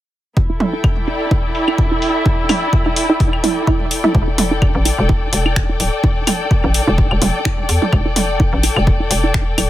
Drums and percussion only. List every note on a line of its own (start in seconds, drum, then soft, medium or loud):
0.37 kick loud
0.60 open hi-hat medium
0.60 mid tom medium
0.84 kick loud
0.84 claves soft
1.07 open hi-hat medium
1.31 kick loud
1.31 open hi-hat soft
1.55 open hi-hat medium
1.68 claves soft
1.78 kick loud
2.02 open hi-hat medium
2.26 kick loud
2.49 open hi-hat medium
2.49 mid tom medium
2.49 claves soft
2.73 kick loud
2.96 open hi-hat medium
3.20 kick loud
3.20 open hi-hat soft
3.33 claves soft
3.44 open hi-hat medium
3.44 mid tom medium
3.67 kick loud
3.91 open hi-hat medium
4.04 mid tom medium
4.15 kick loud
4.38 open hi-hat medium
4.38 mid tom loud
4.62 kick loud
4.62 claves soft
4.85 open hi-hat loud
5.09 kick loud
5.33 open hi-hat medium
5.46 claves soft
5.56 finger snap loud
5.56 kick loud
5.80 open hi-hat medium
6.04 kick loud
6.27 open hi-hat loud
6.27 mid tom medium
6.27 claves soft
6.51 kick loud
6.74 open hi-hat medium
6.98 kick loud
7.11 claves soft
7.22 open hi-hat loud
7.22 mid tom loud
7.45 finger snap loud
7.45 kick loud
7.69 open hi-hat loud
7.82 mid tom medium
7.93 kick loud
7.93 claves soft
8.16 open hi-hat medium
8.16 mid tom medium
8.40 kick loud
8.63 open hi-hat loud
8.76 claves soft
8.87 kick loud
9.11 open hi-hat loud
9.34 finger snap loud
9.34 kick loud
9.58 open hi-hat loud
9.58 claves soft